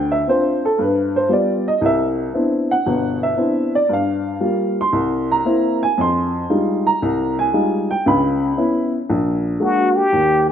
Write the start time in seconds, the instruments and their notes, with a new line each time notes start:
Already playing: upright piano D2 G5
0.12 upright piano E5
0.27 upright piano C4 D4 F4 C5
0.65 upright piano A4
0.79 upright piano G2 B4
1.16 upright piano C5
1.29 upright piano G3 B3 F4
1.33 upright piano D5
1.68 upright piano D#5
1.81 upright piano C2
1.86 upright piano E5
2.34 upright piano B3 C4 D4 E4
2.71 upright piano F#5
2.86 upright piano G1 B2
3.23 upright piano E5
3.37 upright piano B3 C4 D4 E4
3.75 upright piano D5
3.89 upright piano G2
3.93 upright piano F5
4.41 upright piano G3 A#3 F4
4.81 upright piano C6
4.93 upright piano C2
5.32 upright piano A#5
5.45 upright piano A#3 C4 E4
5.83 upright piano G#5
5.98 upright piano F2 C6
6.50 upright piano G3 G#3 D#4 F4
6.87 upright piano A#5
7.02 upright piano C2
7.39 upright piano G#5
7.53 upright piano G3 G#3 D#4 F4
7.91 upright piano G5
8.06 upright piano C#2 C#3 B5
8.57 upright piano B3 C#4 E4
9.10 upright piano A#1
9.60 upright piano G#3 A#3 D4 F#4, muted trumpet F#4
9.96 muted trumpet G4
10.13 upright piano D#2